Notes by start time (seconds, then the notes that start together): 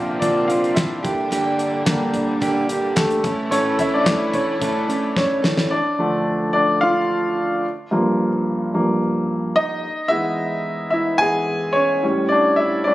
Already playing: A#2 C3 D3 F3 A#3 C4 D4 F4 C5 D5 E5 F5
0.20 A#2 D3 A#3 C4 D4 F4 D5, kick, closed hi-hat
0.48 A#3 C4 F4 F5, closed hi-hat
0.64 closed hi-hat
0.74 E4 E5, kick, snare, clap, closed hi-hat
1.03 A#2 D3 G3 A#3 D4 G4, kick, closed hi-hat, floor tom
1.30 G2 D3 G3 A#3 D4 G4, closed hi-hat
1.59 closed hi-hat
1.85 G2 D3 G3 A#3 D4 G4, kick, snare, clap, closed hi-hat
2.14 closed hi-hat, floor tom
2.40 G2 D3 G3 A#3 D4 G4, kick, closed hi-hat
2.68 G3 A#3 D4 G4, closed hi-hat
2.96 A3 A4, kick, snare, clap, closed hi-hat
3.11 closed hi-hat
3.23 E3 A3 C#4 E4 A4, kick, closed hi-hat, floor tom
3.51 A2 E3 A3 C#4 A4 C#5, closed hi-hat
3.78 A3 C#4 E4 A4 E5, closed hi-hat, floor tom
3.94 D4 D5
4.04 A2 E3 A3 C#4 A4, kick, snare, clap, closed hi-hat
4.33 C#4 C#5, closed hi-hat, floor tom
4.60 A2 E3 A3 C#4 A4, kick, closed hi-hat
4.88 A3 C#4 A4, closed hi-hat
5.17 C#4 C#5, kick, snare
5.42 A2 E3 A3 C#4 A4, snare
5.57 snare
5.71 D4 D5
5.99 D3 F3 A3
6.53 D4 D5
6.81 F4 F5
7.91 G2 F3 A#3
8.74 G2 F3 A#3
9.56 D#4 D#5
10.08 E3 G#3 B3 E4 E5
10.90 E4 E5
11.18 E3 G#3 B3 G#4 G#5
11.73 C#4 C#5
12.03 A2 G3 C#4
12.29 D4 D5
12.56 E4 E5
12.84 A2 G3 C#4 D4 D5